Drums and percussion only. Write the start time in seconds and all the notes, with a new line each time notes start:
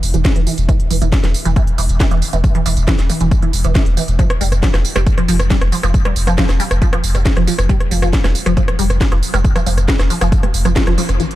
0.03 open hi-hat, tambourine
0.14 closed hi-hat, tambourine
0.25 kick, snare, closed hi-hat, tambourine
0.36 closed hi-hat
0.47 open hi-hat, tambourine
0.58 closed hi-hat, tambourine
0.69 kick, closed hi-hat, tambourine
0.80 closed hi-hat
0.91 open hi-hat, tambourine
1.02 closed hi-hat, tambourine
1.12 kick, snare, closed hi-hat, tambourine
1.24 snare, closed hi-hat, tambourine
1.34 open hi-hat, tambourine
1.45 closed hi-hat, tambourine
1.56 kick, closed hi-hat, tambourine
1.67 closed hi-hat
1.78 open hi-hat, tambourine
1.89 closed hi-hat, tambourine
2.00 kick, snare, closed hi-hat, tambourine
2.11 closed hi-hat
2.22 open hi-hat, tambourine
2.33 closed hi-hat, tambourine
2.44 kick, closed hi-hat, tambourine
2.55 closed hi-hat
2.66 open hi-hat, tambourine
2.77 closed hi-hat, tambourine
2.88 kick, snare, closed hi-hat, tambourine
2.99 snare, closed hi-hat, tambourine
3.10 open hi-hat, tambourine
3.21 closed hi-hat, tambourine
3.31 kick, closed hi-hat, tambourine
3.42 closed hi-hat
3.53 open hi-hat, tambourine
3.64 closed hi-hat, tambourine
3.75 kick, snare, closed hi-hat, tambourine
3.86 closed hi-hat
3.97 open hi-hat, tambourine
4.08 closed hi-hat, tambourine
4.19 kick, closed hi-hat, tambourine
4.30 cross-stick, closed hi-hat
4.41 open hi-hat, tambourine
4.52 cross-stick, closed hi-hat, tambourine
4.63 kick, snare, closed hi-hat, tambourine
4.74 cross-stick, snare, closed hi-hat, tambourine
4.85 open hi-hat, tambourine
4.96 cross-stick, closed hi-hat, tambourine
5.07 kick, closed hi-hat, tambourine
5.18 cross-stick, closed hi-hat
5.28 open hi-hat, tambourine
5.39 cross-stick, closed hi-hat, tambourine
5.50 kick, snare, closed hi-hat, tambourine
5.61 cross-stick, closed hi-hat
5.72 open hi-hat, tambourine
5.83 cross-stick, closed hi-hat, tambourine
5.94 kick, closed hi-hat, tambourine
6.05 cross-stick, closed hi-hat
6.16 open hi-hat, tambourine
6.27 cross-stick, closed hi-hat, tambourine
6.38 kick, snare, closed hi-hat, tambourine
6.49 cross-stick, snare, closed hi-hat, tambourine
6.60 open hi-hat, tambourine
6.71 cross-stick, closed hi-hat, tambourine
6.82 kick, closed hi-hat, tambourine
6.93 cross-stick, closed hi-hat
7.04 open hi-hat, tambourine
7.15 cross-stick, closed hi-hat, tambourine
7.26 kick, snare, closed hi-hat, tambourine
7.37 cross-stick, closed hi-hat
7.47 open hi-hat, tambourine
7.59 cross-stick, closed hi-hat, tambourine
7.69 kick, closed hi-hat, tambourine
7.80 cross-stick, closed hi-hat
7.91 open hi-hat, tambourine
8.02 cross-stick, closed hi-hat, tambourine
8.13 kick, snare, closed hi-hat, tambourine
8.24 cross-stick, snare, closed hi-hat, tambourine
8.35 open hi-hat, tambourine
8.46 cross-stick, closed hi-hat, tambourine
8.57 kick, closed hi-hat, tambourine
8.68 cross-stick, closed hi-hat
8.79 open hi-hat, tambourine
8.90 cross-stick, closed hi-hat, tambourine
9.01 kick, snare, closed hi-hat, tambourine
9.12 cross-stick, closed hi-hat
9.23 open hi-hat, tambourine
9.34 cross-stick, closed hi-hat, tambourine
9.45 kick, closed hi-hat, tambourine
9.56 cross-stick, closed hi-hat, tambourine
9.66 open hi-hat, tambourine
9.78 cross-stick, closed hi-hat, tambourine
9.88 kick, snare, closed hi-hat, tambourine
9.99 cross-stick, snare, closed hi-hat, tambourine
10.10 open hi-hat, tambourine
10.21 cross-stick, closed hi-hat, tambourine
10.32 kick, closed hi-hat, tambourine
10.43 cross-stick, closed hi-hat
10.54 open hi-hat, tambourine
10.65 cross-stick, closed hi-hat, tambourine
10.76 kick, snare, closed hi-hat, tambourine
10.87 cross-stick, closed hi-hat
10.98 open hi-hat, tambourine
11.09 cross-stick, closed hi-hat, tambourine
11.20 closed hi-hat, tambourine
11.31 closed hi-hat